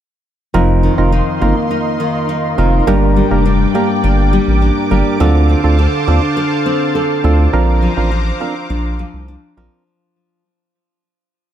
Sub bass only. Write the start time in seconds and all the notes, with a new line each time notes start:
0.54 F1
0.98 F1
1.42 G1
2.58 F1
2.87 G1
3.31 F1
4.04 G1
4.48 A1
4.91 G1
5.20 D2
5.64 D2
6.08 D#2
7.24 D2
7.53 A#1
7.97 A1
8.70 A#1
9.13 C2
9.57 A#1